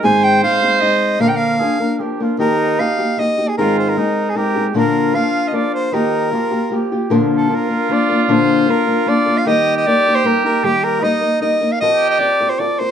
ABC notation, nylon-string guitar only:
X:1
M:3/4
L:1/8
Q:1/4=153
K:Eb
V:1 name="Nylon-string guitar"
[A,,E,A,CEA]2 [A,CEA] [A,CEA] [A,CEA]2 | [B,,D,F,B,DB]2 [F,B,DB] [F,B,DB] [F,B,DB] [F,B,DB] | [E,F,B,EG]2 [F,B,EG] [B,EG] [F,B,EG] [B,EG] | [A,,E,A,CEA]2 [A,CEA]2 [A,CEA] [A,CEA] |
[B,,D,F,B,DB]2 [F,B,DB]2 [F,B,DB]2 | [E,F,B,FG]2 [F,B,FG] [B,FG] [F,B,FG] [B,FG] | [K:Bb] [B,,D,F,B,DB]2 [F,B,DB] [F,B,DB] [F,B,DB] [F,B,DB] | [B,,D,F,B,DB]2 [F,B,DB] [F,B,DB] [F,B,DB] [F,B,DB] |
[E,G,B,EB]2 [G,B,EB] [B,EB] [G,B,EB] [B,EB] | [E,G,B,EB]2 [G,B,EB] [B,EB] [G,B,EB] [B,EB] | [F,CFB]2 [F,CFB] [CFB] [F,CFB] [CFB] |]